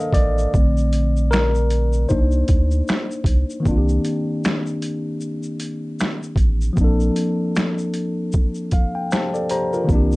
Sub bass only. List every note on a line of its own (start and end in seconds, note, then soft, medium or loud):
0.13 0.47 A1 medium
0.54 2.06 A#1 loud
2.11 2.44 C2 loud
2.49 2.82 D2 loud
3.24 3.44 C2 loud
3.66 3.99 C2 loud
6.36 6.70 A1 loud
6.77 7.10 A#1 loud
9.89 10.16 C2 medium